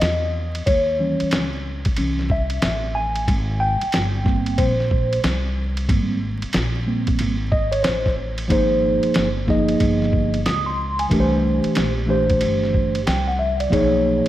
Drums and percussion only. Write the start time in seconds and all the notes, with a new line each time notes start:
0.01 snare, hi-hat pedal, ride
0.55 ride
0.67 kick, ride
1.20 ride
1.31 snare, hi-hat pedal, ride
1.85 kick, ride
1.96 ride
2.19 snare
2.30 kick
2.50 ride
2.62 snare, hi-hat pedal, ride
3.16 ride
3.28 kick, ride
3.81 ride
3.92 snare, hi-hat pedal, ride
4.26 kick, snare
4.46 ride
4.58 kick, ride
4.80 snare
4.91 kick
5.13 ride
5.24 snare, hi-hat pedal, ride
5.77 ride
5.89 kick, ride
6.42 ride
6.53 snare, hi-hat pedal, ride
7.07 kick, ride
7.19 ride
7.52 kick
7.72 ride
7.84 snare, hi-hat pedal, ride
8.06 kick, snare
8.38 ride
8.50 kick, ride
9.03 ride
9.14 snare, hi-hat pedal, ride
9.48 kick, snare
9.69 ride
9.80 kick, ride
10.02 snare
10.13 kick
10.34 ride
10.46 snare, hi-hat pedal, ride
10.99 ride
11.11 kick, ride
11.64 ride
11.75 snare, hi-hat pedal, ride
12.30 kick, ride
12.41 ride
12.63 snare
12.74 kick
12.95 ride
13.07 snare, hi-hat pedal, ride
13.60 ride
13.72 kick, ride